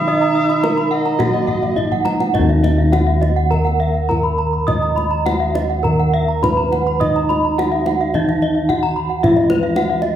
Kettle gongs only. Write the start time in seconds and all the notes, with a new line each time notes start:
Already playing: D#3
0.07 D#5
0.64 E4
1.19 A#2
1.77 E4
2.34 D#4
2.39 D#2
2.93 E4
4.09 E4
4.68 D#5
5.27 E4
5.85 D#3
6.42 E4
7.01 D#5
7.59 E4
8.15 E3
8.70 E4
9.24 E4
9.76 E4